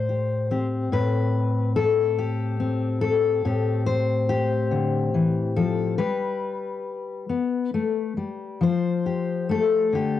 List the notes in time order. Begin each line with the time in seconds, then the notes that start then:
Already playing: A2 C5
0.09 G4
0.51 C4 G4
0.92 A2 B4
1.76 A4
2.18 G4
2.60 C4
3.01 A4
3.45 A2 C4 G4
3.86 C5
4.29 G4
4.71 D3
5.14 E3
5.56 F3 A4
5.98 G3 B4
7.29 B3
7.74 A3
8.17 G3
8.61 F3 C5
9.06 G4
9.49 A3 A4
9.93 D3 G4